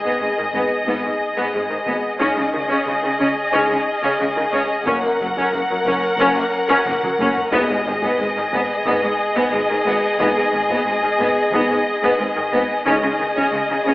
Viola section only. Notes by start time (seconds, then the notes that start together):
0.05 B3
0.21 G#3
0.38 D#3
0.54 B3
0.87 B3
1.04 G#3
1.37 B3
1.55 G#3
1.70 D#3
1.86 B3
2.19 C#4
2.36 G#3
2.52 D#3
2.68 C#4
2.86 G#3
3.02 D#3
3.19 C#4
3.53 C#4
3.69 G#3
4.03 C#4
4.19 G#3
4.36 D#3
4.52 C#4
4.87 C#4
5.04 A#3
5.21 F#3
5.37 C#4
5.54 A#3
5.70 F#3
5.87 C#4
6.20 C#4
6.36 A#3
6.69 C#4
6.88 A#3
7.04 F#3
7.21 C#4
7.53 B3
7.72 G#3
7.88 D#3
8.03 B3
8.21 G#3
8.37 D#3
8.53 B3
8.87 B3
9.03 G#3
9.36 B3
9.53 G#3
9.69 D#3
9.86 B3
10.20 B3
10.38 G#3
10.54 D#3
10.71 B3
10.88 G#3
11.04 D#3
11.20 B3
11.54 B3
11.71 G#3
12.04 B3
12.19 G#3
12.36 D#3
12.53 B3
12.86 C#4
13.03 G#3
13.19 D#3
13.36 C#4
13.51 G#3
13.70 D#3
13.87 C#4